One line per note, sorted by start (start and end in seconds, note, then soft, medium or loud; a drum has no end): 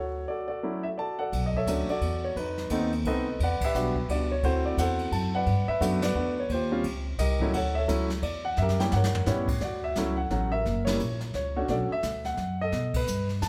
0.00 0.25 D2 medium
0.00 0.29 F#4 medium
0.00 0.29 A4 medium
0.00 0.30 C#5 medium
0.28 0.48 F#4 medium
0.28 0.48 A4 medium
0.28 0.46 D5 medium
0.48 0.94 F#4 medium
0.48 0.95 A4 medium
0.48 0.85 D5 medium
0.63 0.83 F#3 medium
0.63 0.83 A3 medium
0.63 0.83 C#4 medium
0.63 0.83 E4 medium
0.83 0.88 E5 medium
0.98 1.30 F#4 soft
0.98 1.19 A4 soft
0.98 1.19 D5 medium
0.98 1.19 A5 medium
1.19 1.56 A4 medium
1.19 1.65 D5 medium
1.19 1.43 F#5 medium
1.32 1.66 B1 medium
1.32 kick soft
1.32 ride medium
1.46 1.55 D#5 medium
1.54 1.89 A4 medium
1.54 2.00 C#5 medium
1.54 1.88 E5 medium
1.54 kick soft
1.67 1.87 D2 medium
1.67 1.87 F#3 medium
1.67 1.87 A3 medium
1.67 1.87 C#4 medium
1.67 1.88 D4 medium
1.67 kick soft
1.67 hi-hat pedal medium
1.67 ride medium
1.89 2.34 F#4 medium
1.89 2.34 A4 medium
1.89 2.25 D5 loud
1.89 muted upright bass stroke soft
1.89 ride soft
2.01 2.35 E2 medium
2.01 kick soft
2.01 ride medium
2.24 2.36 C#5 medium
2.36 2.69 F2 medium
2.36 2.70 D#4 medium
2.36 2.69 B4 medium
2.36 kick soft
2.36 ride medium
2.58 snare soft
2.70 3.04 D#2 medium
2.70 2.90 A3 medium
2.70 2.91 B3 medium
2.70 2.90 C4 medium
2.70 2.91 D#4 medium
2.70 kick soft
2.70 hi-hat pedal medium
2.70 ride medium
2.92 ride soft
3.05 3.38 C2 medium
3.05 3.25 A3 medium
3.05 3.25 B3 medium
3.05 3.25 C4 medium
3.05 3.25 D#4 medium
3.05 3.38 A4 medium
3.05 3.38 B4 medium
3.05 3.42 D#5 medium
3.05 kick soft
3.05 ride medium
3.39 3.60 E2 medium
3.39 3.64 B4 medium
3.39 3.64 F#5 medium
3.39 kick soft
3.39 ride medium
3.44 3.94 D5 medium
3.61 3.95 E5 loud
3.61 muted upright bass stroke soft
3.61 kick medium
3.61 crash medium
3.65 4.07 G4 medium
3.65 4.08 B4 medium
3.74 4.08 B1 medium
3.74 3.94 G3 medium
3.74 3.94 B3 medium
3.74 3.94 D4 medium
3.74 3.94 F#4 medium
3.74 hi-hat pedal medium
3.96 kick medium
4.09 4.42 C#2 medium
4.09 4.29 G3 soft
4.09 4.29 B3 soft
4.09 4.29 D4 soft
4.09 4.29 F#4 medium
4.09 4.30 D5 medium
4.09 kick soft
4.09 ride medium
4.32 4.43 C#5 medium
4.43 4.76 D2 medium
4.43 5.39 A3 medium
4.43 5.39 C4 medium
4.43 5.39 E4 medium
4.43 5.40 F#4 medium
4.43 4.64 C5 medium
4.43 kick soft
4.43 ride medium
4.65 4.78 D5 medium
4.77 5.11 E2 medium
4.77 5.31 A4 medium
4.77 5.31 C5 medium
4.77 5.10 F#5 loud
4.77 kick soft
4.77 hi-hat pedal medium
4.77 ride medium
4.99 ride soft
5.12 5.45 F#2 medium
5.12 5.32 A5 loud
5.12 kick soft
5.12 ride medium
5.35 5.69 B4 medium
5.35 5.79 D5 medium
5.35 5.66 F#5 loud
5.46 5.66 G2 medium
5.46 kick soft
5.46 ride medium
5.68 6.03 B4 medium
5.68 6.04 E5 loud
5.68 muted upright bass stroke soft
5.81 6.14 F#2 medium
5.81 6.00 A3 medium
5.81 6.00 B3 medium
5.81 6.01 D4 medium
5.81 6.00 F#4 medium
5.81 kick soft
5.81 hi-hat pedal medium
5.81 ride medium
6.02 6.15 F#4 medium
6.02 6.48 B4 medium
6.02 6.38 D5 medium
6.02 snare medium
6.02 ride medium
6.15 6.49 E2 medium
6.15 6.35 A3 medium
6.15 6.35 B3 medium
6.15 6.35 D4 medium
6.15 6.35 F#4 medium
6.40 6.51 C#5 medium
6.49 6.83 D#2 medium
6.49 6.83 C5 medium
6.49 kick soft
6.49 ride medium
6.54 6.71 F4 medium
6.54 7.05 G4 medium
6.71 6.83 G3 medium
6.71 6.84 C4 medium
6.71 6.83 C#4 medium
6.71 6.84 F4 medium
6.83 7.18 C#2 medium
6.83 kick soft
6.83 ride medium
7.18 7.52 C2 medium
7.18 7.52 G4 medium
7.18 7.52 A#4 medium
7.18 7.51 D#5 medium
7.18 kick soft
7.18 snare soft
7.18 hi-hat pedal medium
7.18 ride medium
7.40 7.52 F#3 medium
7.40 7.53 A3 medium
7.40 7.53 C#4 medium
7.40 7.53 E4 medium
7.40 kick medium
7.53 7.87 D2 medium
7.53 7.77 A4 medium
7.53 7.77 C#5 medium
7.53 7.74 F#5 medium
7.53 kick soft
7.53 ride medium
7.75 8.21 A4 medium
7.75 8.21 C#5 medium
7.75 8.07 E5 medium
7.88 8.22 C#2 medium
7.88 8.08 F#3 medium
7.88 8.08 A3 medium
7.88 8.08 C#4 medium
7.88 8.08 E4 medium
7.88 kick soft
7.88 hi-hat pedal medium
7.88 ride medium
8.10 snare medium
8.22 8.56 E2 medium
8.22 8.45 D5 medium
8.22 kick soft
8.22 ride medium
8.45 8.58 F#5 loud
8.57 8.91 F#2 medium
8.57 8.80 E5 medium
8.57 snare soft
8.62 9.12 G4 medium
8.62 8.94 A#4 medium
8.69 snare medium
8.80 8.91 G3 medium
8.80 8.92 A#3 medium
8.80 8.91 C#4 medium
8.80 8.92 E4 medium
8.80 8.91 G5 medium
8.80 snare medium
8.92 9.26 G2 medium
8.92 9.26 A#4 medium
8.92 9.45 F#5 medium
8.92 snare medium
8.96 9.26 C#5 medium
9.04 snare medium
9.15 floor tom medium
9.26 9.60 A2 medium
9.26 9.46 G3 medium
9.26 9.46 B3 medium
9.26 9.46 C#4 medium
9.26 9.46 E4 medium
9.26 9.59 C#5 medium
9.26 snare medium
9.26 hi-hat pedal medium
9.31 9.61 G4 medium
9.48 kick medium
9.48 crash medium
9.61 9.95 D2 medium
9.61 10.15 F#4 medium
9.61 9.84 D5 medium
9.61 brush sweep soft
9.61 snare soft
9.84 10.19 E5 medium
9.95 10.29 C#2 medium
9.95 10.16 F#3 medium
9.95 10.16 A3 medium
9.95 10.16 C#4 medium
9.95 10.16 E4 medium
9.95 kick soft
9.95 snare medium
9.95 hi-hat pedal medium
10.17 10.53 F#5 medium
10.30 10.64 A1 medium
10.30 10.50 F#3 medium
10.30 10.50 A3 medium
10.30 10.50 C#4 medium
10.30 10.51 F#4 medium
10.30 kick soft
10.30 snare soft
10.52 10.97 A#4 medium
10.52 10.88 E5 loud
10.65 10.99 F#1 medium
10.65 brush sweep soft
10.65 kick soft
10.65 snare soft
10.85 10.99 G3 medium
10.85 10.99 A#3 medium
10.85 10.99 C#4 medium
10.85 10.99 E4 medium
10.85 11.18 C#5 medium
10.85 snare medium
10.85 ride medium
11.00 11.33 A#1 medium
11.00 hi-hat pedal medium
11.21 snare soft
11.34 11.68 C#2 medium
11.34 11.55 C#5 medium
11.34 kick soft
11.34 snare soft
11.56 11.68 A3 medium
11.56 11.68 C#4 medium
11.56 11.68 D4 medium
11.56 11.68 F#4 medium
11.56 11.62 C#5 medium
11.68 11.89 B1 medium
11.68 11.89 A3 medium
11.68 11.89 C#4 medium
11.68 11.89 D4 medium
11.68 11.89 F#4 medium
11.68 12.23 A4 medium
11.68 11.75 D5 medium
11.68 brush sweep soft
11.68 kick soft
11.68 snare soft
11.91 12.24 E5 loud
11.91 muted upright bass stroke soft
12.03 12.37 D2 medium
12.03 kick soft
12.03 snare medium
12.03 hi-hat pedal soft
12.25 12.61 F#5 medium
12.25 snare soft
12.37 12.71 F#2 medium
12.37 kick soft
12.37 snare soft
12.61 13.06 A4 medium
12.61 12.96 D#5 loud
12.72 13.06 B2 medium
12.72 brush sweep soft
12.72 kick soft
12.72 snare soft
12.94 13.28 B4 medium
12.94 kick medium
12.94 crash medium
13.07 13.41 G2 medium
13.07 hi-hat pedal medium
13.29 snare soft
13.42 13.49 F#2 medium
13.42 13.47 A5 loud
13.42 kick soft
13.42 snare medium
13.42 hi-hat pedal medium